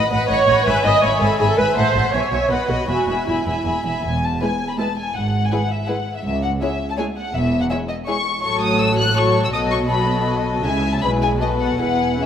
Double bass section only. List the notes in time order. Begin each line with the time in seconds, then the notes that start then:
0.12 A1
0.30 A1
0.49 A1
0.67 G#1
0.86 G#1
1.04 G#1
1.21 G#1
1.40 G#1
1.58 G#1
1.76 A1
1.94 A1
2.14 B1
2.32 B1
2.50 B1
2.69 B1
2.89 E1
3.08 E1
3.28 E1
3.47 E1
3.66 E1
3.85 E1
4.04 E1
5.15 G#1
6.24 C#2
7.34 E1
8.44 A1
9.53 B1
10.64 C#2
11.02 B1
11.80 E1